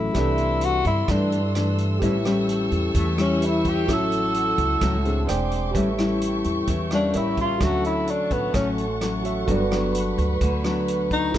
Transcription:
Already playing: A1 A2 F#3 A3 C#4 E4 F#4 A4 C#5 E5
0.13 C2 C3 E3 A3 G4 A4 D5 C6 E6, kick, cross-stick, closed hi-hat
0.17 D4 E5
0.38 closed hi-hat
0.61 F#4, closed hi-hat
0.85 G2 E4, kick, closed hi-hat
1.08 G2 E3 A3 D4, kick, cross-stick, closed hi-hat
1.32 closed hi-hat
1.55 E3 A3 D4, cross-stick, closed hi-hat
1.78 closed hi-hat
1.99 A1 A2 G3 C#4 E4 G4 B4 G5 C#6, kick, closed hi-hat
2.03 C#5 E5
2.25 G3 C#4 E4, cross-stick, closed hi-hat
2.49 closed hi-hat
2.71 E2, closed hi-hat
2.95 E2 E3 A3, kick, closed hi-hat
3.18 G3 C#4 E4, cross-stick, closed hi-hat
3.40 G4 B4 C#5 E5, closed hi-hat
3.45 E4
3.65 G4, kick, closed hi-hat
3.85 A1 A2 F#3 C#4 E4 F#4 A4 C#5 F#5, kick, cross-stick, closed hi-hat
3.91 A4 E5
4.12 closed hi-hat
4.34 closed hi-hat
4.58 C#2, kick, closed hi-hat
4.81 C#2 A2 F#3 C#4 E4, kick, cross-stick, closed hi-hat
5.05 C4 D4 G#4, closed hi-hat
5.27 E1 G#4 C5 D5 E5 G5 C6 D6, cross-stick, closed hi-hat
5.51 closed hi-hat
5.71 A1 A2 G3 G4 A4 B4, kick, closed hi-hat
5.76 C#4 E4 C#5 E5 G5 C#6
5.98 G3 C#4 E4, cross-stick, closed hi-hat
6.21 closed hi-hat
6.44 E2, closed hi-hat
6.67 E2 E3, kick, closed hi-hat
6.91 G3 A#3 C#4 D4, cross-stick, closed hi-hat
7.13 A1 G4 A#4 C#5 E5 A5 C#6, closed hi-hat
7.17 E4
7.37 F4, kick, closed hi-hat
7.58 D2 D3 F#3 C#4 F#4 A4 C#5 F#5 C#6, kick, cross-stick, closed hi-hat
7.62 A3 C#4 F#4 E5
7.84 E4, closed hi-hat
8.07 D4, closed hi-hat
8.31 A1 B3, kick, closed hi-hat
8.54 A1 A2 F#3 A3 C#4, kick, cross-stick, closed hi-hat
8.78 closed hi-hat
9.01 F#3 A3 C#4, cross-stick, closed hi-hat
9.23 F#4 A4 C#5 E5, closed hi-hat
9.46 G1 G2 F#3 B3 D4 F#4 A4 B4 B5, kick, closed hi-hat
9.51 D5
9.71 F#3 B3 D4, cross-stick, closed hi-hat
9.95 closed hi-hat
10.18 D2, closed hi-hat
10.41 D2 D3, kick, closed hi-hat
10.64 F#3 B3 D4, cross-stick, closed hi-hat
10.88 closed hi-hat
11.11 D#4, kick, closed hi-hat
11.31 C2 C3 E3 A3 E4 G4 C5 E5 A5 C6, kick, cross-stick, closed hi-hat

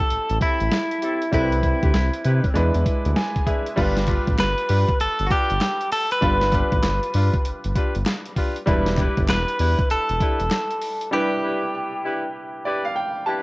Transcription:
Already playing: G3 C4 E4 A4
0.10 A1, closed hi-hat
0.29 A1, closed hi-hat
0.40 C4 E4 G4 A4, kick, closed hi-hat
0.60 A1, closed hi-hat
0.71 snare, closed hi-hat
0.91 closed hi-hat
1.02 C4 E4 G4 A4, closed hi-hat
1.22 closed hi-hat
1.31 C2 G3 C4 E4 G4 A4 B4, kick, closed hi-hat
1.40 B4
1.52 closed hi-hat
1.63 kick, closed hi-hat
1.82 D2 C4 E4 G4 B4, kick, closed hi-hat
1.94 C2, snare, closed hi-hat
2.13 closed hi-hat
2.24 C3 C4 E4 G4 B4, closed hi-hat
2.44 kick, closed hi-hat
2.54 E2 G#3 D4 E4 B4, closed hi-hat
2.74 E2, closed hi-hat
2.86 kick, closed hi-hat
3.05 D2, closed hi-hat
3.16 G#5, snare, closed hi-hat
3.36 kick, closed hi-hat
3.46 D4 E4 G#4 B4 E5, kick, closed hi-hat
3.66 closed hi-hat
3.76 G1 G3 D4 F4 G4 B4, kick, closed hi-hat, crash
3.97 snare, closed hi-hat
4.08 D4 F4 G4 B4, kick, clap, closed hi-hat
4.27 A1, kick, closed hi-hat
4.38 G1 B4, snare, clap, closed hi-hat
4.58 closed hi-hat
4.69 G2 D4 F4 G4 B4, open hi-hat
4.89 kick, closed hi-hat
5.00 G1 A4, closed hi-hat
5.19 G1, closed hi-hat
5.27 D4 F4 F#4, kick
5.31 G4 B4, closed hi-hat
5.50 G1, closed hi-hat
5.61 snare, clap, closed hi-hat
5.81 closed hi-hat
5.92 A4, open hi-hat
6.11 B4, closed hi-hat
6.21 G1 G3 D4 F4 G4 B4, kick, closed hi-hat
6.41 snare, closed hi-hat
6.53 D4 F4 G4 B4, kick, clap, closed hi-hat
6.72 A1, kick, closed hi-hat
6.83 G1, snare, clap, closed hi-hat
7.03 closed hi-hat
7.14 G2 D4 F4 G4 B4, open hi-hat
7.34 kick, closed hi-hat
7.45 G1, closed hi-hat
7.64 G1, closed hi-hat
7.75 D4 F4 G4 B4, kick, closed hi-hat
7.95 G1, closed hi-hat
8.06 snare, clap, closed hi-hat
8.26 closed hi-hat
8.36 D4 F4 G4 B4, kick, open hi-hat
8.56 closed hi-hat
8.66 E1 G3 D4 E4 G4 B4, kick, closed hi-hat
8.86 snare, closed hi-hat
8.97 D4 E4 G4 B4, kick, clap, closed hi-hat
9.17 G1, kick, closed hi-hat
9.28 E1 B4, snare, clap, closed hi-hat
9.48 closed hi-hat
9.59 E2 D4 E4 G4 B4, open hi-hat
9.79 kick, closed hi-hat
9.90 E1 A4, closed hi-hat
10.09 E1, closed hi-hat
10.20 D4 E4 G4 B4, kick, closed hi-hat
10.40 E1, closed hi-hat
10.51 snare, clap, closed hi-hat
10.71 closed hi-hat
10.82 open hi-hat
11.01 closed hi-hat
11.11 G3 D4 E4 G4 B4
11.43 D4 E4 G4 B4
12.04 D4 E4 G4 B4
12.65 D4 E4 G4 B4 D5
12.85 F5
12.96 G5
13.26 D4 E4 G4 B4 A5

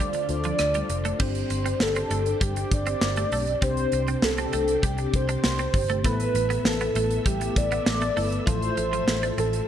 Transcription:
Already playing: D3 A3 C4 D4 F4 A4 C5 D5
0.00 G3
0.13 muted clean electric guitar stroke, closed hi-hat
0.29 D2 D4 F4 A4 C5 D5, closed hi-hat
0.44 F3, closed hi-hat
0.59 D2, cross-stick, closed hi-hat
0.74 G3, closed hi-hat
0.89 F1, muted clean electric guitar stroke, closed hi-hat
1.05 A3, closed hi-hat
1.19 G1 G2 G3 C4 D4 G4 C5, kick, crash
1.35 closed hi-hat
1.50 G1, muted clean electric guitar stroke, closed hi-hat
1.66 C4, closed hi-hat
1.80 G1 A4, muted clean electric guitar stroke, snare
1.96 C4, closed hi-hat
2.10 G1 A3, closed hi-hat
2.26 closed hi-hat
2.36 A4
2.41 G1 G3 G4, kick, closed hi-hat
2.56 muted clean electric guitar stroke, closed hi-hat
2.71 G1 D5, kick, closed hi-hat
2.86 C4, closed hi-hat
3.01 G1, muted clean electric guitar stroke, snare
3.16 A3, closed hi-hat
3.32 B1 A3, open hi-hat
3.47 closed hi-hat
3.61 C2 C3 C4 D4 G4 C5, kick, closed hi-hat
3.77 closed hi-hat
3.92 C2, muted clean electric guitar stroke, closed hi-hat
4.08 C4, closed hi-hat
4.22 C2 A4, muted clean electric guitar stroke, snare
4.38 C4, closed hi-hat
4.53 C2 A3, closed hi-hat
4.68 closed hi-hat
4.83 C2 G3 G4, kick, closed hi-hat
4.98 muted clean electric guitar stroke, closed hi-hat
5.13 C2 C5, kick, closed hi-hat
5.29 D4, closed hi-hat
5.44 C2, snare
5.58 C4, closed hi-hat
5.74 G1, muted clean electric guitar stroke, kick, open hi-hat
5.90 A3, closed hi-hat
6.04 A1 A2 A3 B3 E4 A4 B4 E5, kick, closed hi-hat
6.20 closed hi-hat
6.34 A1, muted clean electric guitar stroke, closed hi-hat
6.50 B3, closed hi-hat
6.65 A1 A4, muted clean electric guitar stroke, snare
6.80 B3, closed hi-hat
6.95 A1 A3, closed hi-hat
7.11 closed hi-hat
7.26 A1 G3 G4, kick, closed hi-hat
7.41 muted clean electric guitar stroke, closed hi-hat
7.56 A1 D5, kick, closed hi-hat
7.72 B3, closed hi-hat
7.86 A1, muted clean electric guitar stroke, snare
8.01 A3, closed hi-hat
8.16 G1 A3 B3 E4 A4 B4, open hi-hat
8.32 closed hi-hat
8.46 A1 A2 F3 E4 F4 A4 C5, kick, closed hi-hat
8.62 closed hi-hat
8.77 A1, muted clean electric guitar stroke, closed hi-hat
8.93 F3, closed hi-hat
9.07 A1, muted clean electric guitar stroke, snare
9.23 D4, closed hi-hat
9.38 A1 C4 A4, closed hi-hat
9.53 closed hi-hat

